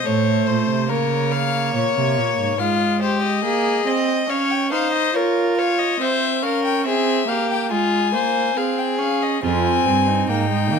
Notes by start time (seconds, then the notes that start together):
Already playing: C5
0.06 A2 A3 C#5
0.47 A#2 C5
0.69 C3
0.89 C#3 A#3 A#4 C#5
1.31 F5
1.74 A#2 C#5
1.96 C3
2.18 A#2
2.39 G#2
2.59 G#3 F4 F5
3.01 G4 C5
3.22 D#5
3.44 A#3 G#4
3.86 C4 D#5
4.29 C#4 C#5 F5
4.51 G5
4.71 D#4 C5 F5
4.93 D#5
5.14 F4 A#4 C#5
5.57 C#5 F5
5.78 D#5
6.00 C4 C5 E5
6.42 C#4 A#4 F5
6.65 G5
6.85 C4 G#4 E5
7.28 A#3 G4 F5
7.51 G5
7.71 G#3 F4 G#5
8.13 A#3 C5
8.56 C4 G#4 F5
8.79 G5
8.99 C#4 F5
9.22 D#5
9.42 F2 C4 F4 G#5
9.86 G2 C4
10.08 D#4
10.29 G#2 A#3 G5
10.50 G#3
10.72 D#3 A#3